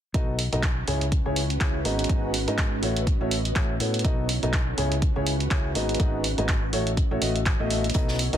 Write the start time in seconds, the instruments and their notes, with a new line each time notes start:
0.14 fingered electric bass B1, upright piano B2 B3 D#4 F#4 A4 D#5, ambient pad C#4, kick, closed hi-hat
0.33 ambient pad B4
0.39 ambient pad F#4, open hi-hat
0.53 fingered electric bass B1, upright piano B2 B3 D#4 F#4 A4 D#5, closed hi-hat
0.63 kick, clap, closed hi-hat
0.87 fingered electric bass C#2, upright piano C#3 E4 G#4 C#5, open hi-hat
1.01 closed hi-hat
1.12 kick, closed hi-hat
1.26 fingered electric bass C#2, upright piano C#3 E4 G#4 C#5
1.36 open hi-hat
1.50 closed hi-hat
1.61 fingered electric bass C#2, upright piano E4 G#4 C#5, kick, clap, closed hi-hat
1.85 fingered electric bass G#1, upright piano G#2 B3 D#4 F#4 G#4 D#5, open hi-hat
1.99 closed hi-hat
2.04 closed hi-hat
2.09 upright piano G#2 B3 D#4 F#4 G#4 D#5, kick, closed hi-hat
2.21 ambient pad D#5
2.34 open hi-hat
2.48 upright piano G#2 B3 D#4 F#4 G#4 D#5, fingered electric bass G#2, closed hi-hat
2.58 kick, clap, closed hi-hat
2.83 fingered electric bass A1, upright piano A3 F#4 A4 C#5, ambient pad B3, open hi-hat
2.96 closed hi-hat
3.07 kick, closed hi-hat
3.21 fingered electric bass A1, upright piano A3 F#4 A4 C#5
3.31 open hi-hat
3.45 closed hi-hat
3.56 fingered electric bass A1, upright piano A3 F#4 A4 C#5, kick, clap, closed hi-hat
3.80 fingered electric bass A2, upright piano B3 F#4 A4 C#5, open hi-hat
3.94 closed hi-hat
3.99 closed hi-hat
4.04 fingered electric bass B1, upright piano B2 B3 D#4 F#4 A4 D#5, ambient pad C#4, kick, closed hi-hat
4.10 ambient pad F#4
4.20 ambient pad B4
4.29 open hi-hat
4.43 fingered electric bass B1, upright piano B2 B3 D#4 F#4 A4 D#5, closed hi-hat
4.53 kick, clap, closed hi-hat
4.78 fingered electric bass C#2, upright piano C#3 E4 G#4 C#5, open hi-hat
4.92 closed hi-hat
5.02 kick, closed hi-hat
5.16 fingered electric bass C#2, upright piano C#3 E4 G#4 C#5
5.27 open hi-hat
5.40 closed hi-hat
5.51 fingered electric bass C#2, upright piano E4 G#4 C#5, kick, clap, closed hi-hat
5.75 fingered electric bass G#1, upright piano G#2 B3 D#4 F#4 G#4 D#5, open hi-hat
5.89 closed hi-hat
5.94 closed hi-hat
6.00 fingered electric bass G#1, upright piano G#2 B3 D#4 F#4 G#4 D#5, kick, closed hi-hat
6.24 open hi-hat
6.38 fingered electric bass G#1, upright piano G#2 B3 D#4 F#4 G#4 D#5, closed hi-hat
6.48 kick, clap, closed hi-hat
6.73 fingered electric bass A1, upright piano A3 F#4 A4 C#5, ambient pad B3, open hi-hat
6.87 closed hi-hat
6.97 kick, closed hi-hat
7.03 ambient pad A4
7.11 fingered electric bass A1, upright piano A3 F#4 A4 C#5, ambient pad C#5
7.22 fingered electric bass A1, upright piano A3 F#4 A4 D#5, open hi-hat
7.36 closed hi-hat
7.46 kick, clap, closed hi-hat
7.60 fingered electric bass A1, upright piano A3 F#4 A4 D#5
7.70 open hi-hat
7.84 closed hi-hat
7.90 closed hi-hat
7.94 fingered electric bass B1, upright piano B2 B3 D#4 F#4 A4 D#5, ambient pad C#4, kick, closed hi-hat
8.08 snare
8.15 ambient pad B4
8.19 ambient pad F#4, closed hi-hat, open hi-hat
8.33 fingered electric bass B1, upright piano B2 B3 D#4 F#4 A4 D#5, closed hi-hat